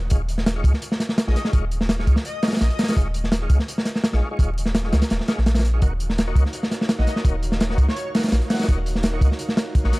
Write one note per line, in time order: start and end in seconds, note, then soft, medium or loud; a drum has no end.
0.10 0.63 D#1 medium
0.10 0.22 G#3 medium
0.10 0.22 D#4 medium
0.10 0.22 F4 medium
0.10 0.22 C#5 medium
0.10 kick loud
0.10 closed hi-hat medium
0.29 closed hi-hat medium
0.38 snare soft
0.46 snare loud
0.46 closed hi-hat medium
0.56 0.73 G#3 loud
0.56 0.73 D#4 medium
0.56 0.73 F4 medium
0.56 0.73 C#5 loud
0.64 0.73 C#2 loud
0.64 kick medium
0.64 closed hi-hat medium
0.73 snare soft
0.82 closed hi-hat medium
0.92 snare medium
1.00 snare medium
1.00 closed hi-hat medium
1.09 snare medium
1.18 snare loud
1.18 closed hi-hat loud
1.27 1.35 A#1 loud
1.27 1.43 G#3 medium
1.27 1.43 D#4 medium
1.27 1.43 F4 medium
1.27 1.43 C#5 loud
1.27 1.33 D#5 medium
1.27 snare medium
1.36 1.42 D#5 medium
1.36 snare soft
1.36 closed hi-hat medium
1.45 1.53 G#3 medium
1.45 1.53 D#4 medium
1.45 1.53 F4 medium
1.45 1.53 C#5 medium
1.45 snare medium
1.53 2.06 D#1 loud
1.53 1.65 G#3 medium
1.53 1.65 D#4 medium
1.53 1.65 F4 medium
1.53 1.65 C#5 medium
1.53 kick loud
1.53 closed hi-hat medium
1.71 closed hi-hat medium
1.81 snare medium
1.89 snare loud
1.89 closed hi-hat medium
1.99 2.16 G#3 medium
1.99 2.16 D#4 medium
1.99 2.16 F4 medium
1.99 2.16 C#5 loud
1.99 snare soft
2.07 2.16 C#2 loud
2.07 kick medium
2.07 closed hi-hat medium
2.16 snare medium
2.25 2.47 D#5 loud
2.25 closed hi-hat medium
2.43 2.54 G#3 medium
2.43 2.54 D#4 medium
2.43 2.54 F4 medium
2.43 2.54 C#5 loud
2.43 snare medium
2.43 closed hi-hat medium
2.47 snare loud
2.47 closed hi-hat medium
2.52 snare medium
2.52 closed hi-hat medium
2.56 snare medium
2.56 closed hi-hat medium
2.61 2.70 A#1 loud
2.61 2.97 D#5 loud
2.61 snare loud
2.61 closed hi-hat medium
2.70 closed hi-hat soft
2.79 snare medium
2.79 closed hi-hat medium
2.83 snare medium
2.83 closed hi-hat medium
2.88 2.96 G#3 medium
2.88 2.96 D#4 medium
2.88 2.96 F4 medium
2.88 2.96 C#5 loud
2.88 snare medium
2.88 closed hi-hat medium
2.91 snare medium
2.91 closed hi-hat medium
2.97 3.49 D#1 loud
2.97 3.08 G#3 medium
2.97 3.08 D#4 medium
2.97 3.08 F4 medium
2.97 3.08 C#5 medium
2.97 kick loud
2.97 closed hi-hat medium
3.14 closed hi-hat medium
3.24 snare soft
3.32 snare loud
3.32 closed hi-hat medium
3.42 3.58 G#3 loud
3.42 3.58 D#4 medium
3.42 3.58 F4 medium
3.42 3.58 C#5 loud
3.50 3.59 C#2 medium
3.50 kick medium
3.50 closed hi-hat medium
3.59 snare soft
3.68 closed hi-hat medium
3.78 snare medium
3.85 snare medium
3.85 closed hi-hat medium
3.95 snare medium
4.04 snare loud
4.04 closed hi-hat medium
4.12 4.21 A#1 loud
4.12 4.29 G#3 loud
4.12 4.29 D#4 medium
4.12 4.29 F4 medium
4.12 4.29 C#5 loud
4.12 snare medium
4.31 4.38 G#3 medium
4.31 4.38 D#4 medium
4.31 4.38 F4 medium
4.31 4.38 C#5 medium
4.39 4.91 D#1 medium
4.39 4.50 G#3 medium
4.39 4.50 D#4 medium
4.39 4.50 F4 medium
4.39 4.50 C#5 medium
4.39 kick loud
4.39 closed hi-hat medium
4.58 closed hi-hat medium
4.66 snare medium
4.75 snare loud
4.75 closed hi-hat medium
4.84 5.01 G#3 loud
4.84 5.01 D#4 medium
4.84 5.01 F4 medium
4.84 5.01 C#5 loud
4.84 snare soft
4.93 5.02 C#2 loud
4.93 snare loud
4.93 closed hi-hat medium
5.02 snare loud
5.02 closed hi-hat medium
5.10 5.20 D#1 medium
5.10 snare loud
5.10 closed hi-hat medium
5.20 snare soft
5.28 5.40 G#3 medium
5.28 5.40 D#4 medium
5.28 5.40 F4 medium
5.28 5.40 C#5 medium
5.28 snare loud
5.28 closed hi-hat medium
5.38 5.81 A#1 loud
5.38 snare soft
5.46 snare loud
5.46 closed hi-hat medium
5.55 snare loud
5.55 closed hi-hat medium
5.59 snare medium
5.59 closed hi-hat medium
5.64 snare soft
5.64 closed hi-hat medium
5.74 5.81 G#3 loud
5.74 5.81 D#4 medium
5.74 5.81 F4 medium
5.74 5.81 C#5 loud
5.82 6.35 D#1 loud
5.82 5.93 A#3 medium
5.82 5.93 D#4 medium
5.82 6.70 D#4 medium
5.82 5.93 F#4 medium
5.82 6.70 F#4 medium
5.82 6.70 A#4 medium
5.82 5.93 C#5 medium
5.82 6.70 C#5 medium
5.82 6.70 F5 medium
5.82 kick loud
5.82 closed hi-hat medium
6.00 closed hi-hat medium
6.10 snare soft
6.18 snare loud
6.18 closed hi-hat medium
6.27 6.44 A#3 loud
6.27 6.44 D#4 medium
6.27 6.44 F#4 medium
6.27 6.44 C#5 loud
6.36 6.44 C#2 loud
6.36 kick loud
6.36 closed hi-hat medium
6.45 snare soft
6.53 closed hi-hat medium
6.63 snare medium
6.71 snare soft
6.71 closed hi-hat medium
6.81 snare medium
6.89 snare loud
6.89 closed hi-hat medium
6.99 7.06 A#1 loud
6.99 7.15 A#3 loud
6.99 7.15 D#4 medium
6.99 7.15 F#4 medium
6.99 7.15 C#5 loud
6.99 7.04 D#5 medium
6.99 snare medium
7.07 7.14 D#5 medium
7.07 snare soft
7.07 closed hi-hat medium
7.16 7.24 A#3 medium
7.16 7.24 D#4 medium
7.16 7.24 F#4 medium
7.16 7.24 C#5 medium
7.16 snare soft
7.25 7.77 D#1 loud
7.25 7.36 A#3 medium
7.25 8.12 D#4 medium
7.25 7.36 D#4 medium
7.25 8.13 F#4 medium
7.25 7.36 F#4 medium
7.25 8.12 A#4 medium
7.25 8.13 C#5 medium
7.25 7.36 C#5 medium
7.25 8.13 F5 medium
7.25 kick loud
7.25 closed hi-hat medium
7.43 closed hi-hat medium
7.52 snare medium
7.60 snare loud
7.60 closed hi-hat medium
7.70 7.87 A#3 medium
7.70 7.87 D#4 medium
7.70 7.87 F#4 medium
7.70 7.87 C#5 loud
7.70 snare medium
7.78 7.87 C#2 loud
7.78 kick loud
7.78 closed hi-hat medium
7.88 8.09 C#5 medium
7.88 snare medium
7.96 closed hi-hat medium
8.14 8.25 A#3 medium
8.14 8.25 D#4 medium
8.14 8.25 F#4 medium
8.14 8.25 C#5 loud
8.14 snare loud
8.14 closed hi-hat medium
8.19 snare medium
8.19 closed hi-hat medium
8.23 snare loud
8.23 closed hi-hat medium
8.28 snare medium
8.28 closed hi-hat medium
8.32 8.41 A#1 loud
8.32 snare loud
8.32 closed hi-hat loud
8.41 closed hi-hat soft
8.50 8.56 F#5 medium
8.50 snare medium
8.50 closed hi-hat medium
8.54 snare medium
8.54 closed hi-hat medium
8.59 8.67 A#3 medium
8.59 8.67 D#4 medium
8.59 8.67 F#4 medium
8.59 8.67 C#5 loud
8.59 8.65 F#5 medium
8.59 snare medium
8.59 closed hi-hat medium
8.63 snare medium
8.63 closed hi-hat medium
8.68 9.21 D#1 loud
8.68 8.79 A#3 medium
8.68 8.79 D#4 medium
8.68 9.56 D#4 medium
8.68 8.79 F#4 medium
8.68 9.56 F#4 medium
8.68 9.56 A#4 medium
8.68 8.79 C#5 medium
8.68 9.55 C#5 medium
8.68 9.56 F5 medium
8.68 kick loud
8.68 closed hi-hat medium
8.86 closed hi-hat medium
8.95 snare soft
9.03 snare loud
9.03 closed hi-hat loud
9.13 9.30 A#3 loud
9.13 9.30 D#4 medium
9.13 9.30 F#4 medium
9.13 9.30 C#5 loud
9.21 9.30 C#2 loud
9.21 kick loud
9.21 closed hi-hat medium
9.31 snare soft
9.39 closed hi-hat medium
9.49 snare medium
9.57 snare loud
9.57 closed hi-hat medium
9.75 kick medium
9.75 closed hi-hat medium
9.84 9.92 A#1 loud
9.84 10.00 A#3 medium
9.84 10.00 D#4 medium
9.84 10.00 F#4 medium
9.84 10.00 C#5 loud
9.84 snare soft
9.92 snare soft
9.92 closed hi-hat medium